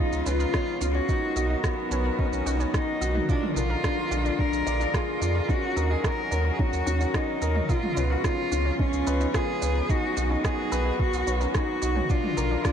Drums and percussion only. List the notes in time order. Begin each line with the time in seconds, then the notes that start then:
0.12 shaker
0.26 shaker
0.40 shaker
0.54 kick, cross-stick, shaker
0.81 shaker
1.09 kick, shaker
1.36 shaker
1.64 kick, cross-stick, shaker
1.91 shaker
2.19 kick
2.33 shaker
2.47 shaker
2.60 shaker
2.74 kick, cross-stick, shaker
3.02 shaker
3.15 mid tom
3.29 kick, shaker
3.43 mid tom
3.57 shaker
3.84 kick, cross-stick, shaker
4.12 shaker
4.26 shaker
4.39 kick
4.53 shaker
4.67 shaker
4.81 shaker
4.94 kick, cross-stick, shaker
5.22 shaker
5.49 kick, shaker
5.77 shaker
6.04 kick, cross-stick, shaker
6.32 shaker
6.59 kick
6.73 shaker
6.87 shaker
7.01 shaker
7.14 kick, cross-stick, shaker
7.42 shaker
7.56 mid tom
7.69 kick, shaker
7.83 mid tom
7.97 shaker
8.24 kick, cross-stick, shaker
8.52 shaker
8.79 kick
8.93 shaker
9.07 shaker
9.21 shaker
9.34 kick, cross-stick, shaker
9.62 shaker
9.89 kick, shaker
10.17 shaker
10.44 kick, cross-stick, shaker
10.72 shaker
11.00 kick
11.13 shaker
11.27 shaker
11.41 shaker
11.55 kick, cross-stick, shaker
11.82 shaker
11.96 mid tom
12.10 kick, shaker
12.24 mid tom
12.37 shaker
12.65 kick, cross-stick, shaker